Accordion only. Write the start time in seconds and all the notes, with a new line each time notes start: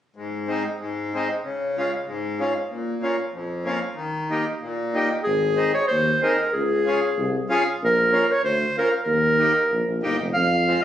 0.16 G#2
0.48 G#3 C4 D#4
0.79 G#2
1.14 G#3 C4 D#4
1.44 C#3
1.77 G#3 C#4 F4
2.06 G#2
2.39 G#3 C#4 F4
2.70 A#2
3.02 A#3 C#4 F4
3.33 F2
3.65 A#3 C#4 F4
3.95 D#3
4.30 A#3 D#4 G4
4.61 A#2
4.94 A#3 D#4 G4
5.57 C4 D#4 G#4
6.22 C4 D#4 G#4
6.86 C#4 F4 G#4
7.50 C#4 F4 G#4
8.12 C#4 F4 A#4
8.78 C#4 F4 A#4
9.39 A#3 D#4 G4
10.03 A#3 D#4 G4
10.67 G#3 C4 F4